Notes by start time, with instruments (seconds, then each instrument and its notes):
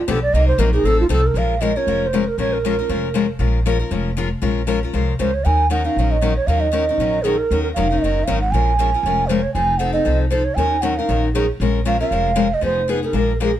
0.00 bansuri F4
0.08 upright bass B1, steel-string acoustic guitar D3 F3 B3 D4 G4, bansuri A4
0.22 bansuri D5
0.33 upright bass C2, steel-string acoustic guitar C3 F#3 A#3 D#4 A#4, bansuri D#5
0.48 bansuri C5
0.58 upright bass A#1, steel-string acoustic guitar C3 F#3 A#3 D#4 A#4, bansuri A#4
0.73 steel-string acoustic guitar A#3 D#4 A#4, bansuri G#4
0.84 upright bass A1, steel-string acoustic guitar F3 C4 D#4 A4, bansuri A4
1.01 bansuri F4
1.09 upright bass C2, steel-string acoustic guitar F3 C4 D#4 A4, bansuri A4
1.26 bansuri A#4
1.34 upright bass A#1, steel-string acoustic guitar F3 G#3 C#4 F4 A#4, bansuri F5
1.61 steel-string acoustic guitar F3 G#3 C#4 F4 A#4, bansuri D#5
1.76 steel-string acoustic guitar C#4 F4 A#4, bansuri C#5
1.87 upright bass F1, steel-string acoustic guitar F3 G#3 C#4 F4 A#4
2.02 bansuri C#5
2.07 bansuri C5
2.13 steel-string acoustic guitar F3 G#3 C#4 F4 A#4
2.28 bansuri A#4
2.38 upright bass A#1, steel-string acoustic guitar F3 G#3 C#4 F4 A#4, bansuri C#5
2.54 bansuri A#4
2.65 steel-string acoustic guitar F3 G#3 C#4 F4 A#4
2.79 steel-string acoustic guitar C#4 F4 A#4
2.89 upright bass F1, steel-string acoustic guitar F3 G#3 C#4 F4 A#4
3.14 steel-string acoustic guitar F3 G#3 C#4 F4 A#4
3.39 upright bass A#1, steel-string acoustic guitar F3 G#3 C#4 F4 A#4
3.66 steel-string acoustic guitar F3 G#3 C#4 F4 A#4
3.79 steel-string acoustic guitar C#4 F4 A#4
3.91 upright bass F1, steel-string acoustic guitar F3 G#3 C#4 F4 A#4
4.17 steel-string acoustic guitar F3 G#3 C#4 F4 A#4
4.42 upright bass A#1, steel-string acoustic guitar F3 G#3 C#4 F4 A#4
4.67 steel-string acoustic guitar F3 G#3 C#4 F4 A#4
4.83 steel-string acoustic guitar C#4 F4 A#4
4.93 upright bass C2, steel-string acoustic guitar F3 G#3 C#4 F4 A#4
5.19 upright bass C#2, steel-string acoustic guitar F3 G#3 C#4 F4 A#4, bansuri C5
5.34 bansuri C#5
5.45 upright bass D#2, steel-string acoustic guitar D#3 F#3 C#4 D#4 A#4, bansuri G#5
5.70 steel-string acoustic guitar D#3 F#3 C#4 D#4 A#4, bansuri F#5
5.85 steel-string acoustic guitar C#4 D#4, bansuri F5
5.96 upright bass A#1, steel-string acoustic guitar D#3 F#3 C#4 D#4 A#4
6.11 bansuri D#5
6.21 steel-string acoustic guitar D#3 F#3 C#4 D#4 A#4
6.36 bansuri C#5
6.47 upright bass D#2, steel-string acoustic guitar D#3 F#3 C#4 D#4 A#4, bansuri F5
6.60 bansuri D#5
6.72 steel-string acoustic guitar D#3 F#3 C#4 D#4 A#4
6.89 steel-string acoustic guitar C#4 D#4 A#4
6.98 upright bass A#1, steel-string acoustic guitar D#3 F#3 C#4 D#4 A#4
7.23 steel-string acoustic guitar D#3 F#3 C#4 D#4 A#4, bansuri G#4
7.37 bansuri A#4
7.51 upright bass D#2, steel-string acoustic guitar D#3 F#3 C#4 D#4 A#4
7.63 bansuri A#4
7.74 upright bass F1, steel-string acoustic guitar D#3 F#3 C#4 D#4 A#4, bansuri F5
7.91 steel-string acoustic guitar C#4 D#4 A#4
7.98 bansuri E5
8.02 upright bass F#1, steel-string acoustic guitar D#3 F#3 C#4 D#4 A#4, bansuri D#5
8.24 upright bass G#1, steel-string acoustic guitar D#3 F#3 C#4, bansuri F5
8.28 steel-string acoustic guitar D#4 A#4
8.41 bansuri F#5
8.51 upright bass A#1, steel-string acoustic guitar F3 G#3 C#4 F4 A#4, bansuri G#5
8.79 steel-string acoustic guitar F3 G#3 C#4 F4 A#4
8.94 steel-string acoustic guitar C#4 F4 A#4
9.03 upright bass F1, steel-string acoustic guitar F3 G#3 C#4 F4 A#4
9.27 steel-string acoustic guitar F3 G#3 C#4 F4 A#4, bansuri C5
9.42 bansuri C#5
9.54 upright bass F1, steel-string acoustic guitar F3 C4 D#4 A4, bansuri G#5
9.78 steel-string acoustic guitar F3 C4 D#4 A4, bansuri F#5
9.93 steel-string acoustic guitar C4 D#4 A4, bansuri D#5
10.05 upright bass C2, steel-string acoustic guitar F3 C4 D#4 A4
10.30 steel-string acoustic guitar F3 C4 D#4 A4, bansuri C5
10.45 bansuri C#5
10.55 upright bass D#2, steel-string acoustic guitar D#3 F#3 C#4 D#4 A#4, bansuri G#5
10.81 steel-string acoustic guitar D#3 F#3 C#4 D#4 A#4, bansuri F#5
10.97 steel-string acoustic guitar C#4 D#4 A#4, bansuri F5
11.09 upright bass A#1, steel-string acoustic guitar D#3 F#3 C#4 D#4 A#4
11.34 steel-string acoustic guitar D#3 F#3 C#4 D#4 A#4, bansuri G#4
11.60 upright bass A#1, steel-string acoustic guitar F3 G#3 C#4 F4 A#4
11.85 steel-string acoustic guitar F3 G#3 C#4 F4 A#4, bansuri F5
12.00 steel-string acoustic guitar C#4 F4 A#4, bansuri F5
12.11 upright bass F1, steel-string acoustic guitar F3 G#3 C#4 F4 A#4
12.35 steel-string acoustic guitar F3 G#3 C#4 F4 A#4
12.54 bansuri D#5
12.61 upright bass F1, steel-string acoustic guitar F3 B3 D#4 G#4, bansuri C5
12.88 steel-string acoustic guitar F3 B3 D#4 G#4, bansuri B4
13.03 steel-string acoustic guitar B3 D#4 G#4, bansuri A#4
13.13 upright bass A#1, steel-string acoustic guitar F3 G#3 D4 F4 A#4
13.40 steel-string acoustic guitar F3 G#3 D4 F4 A#4, bansuri G#4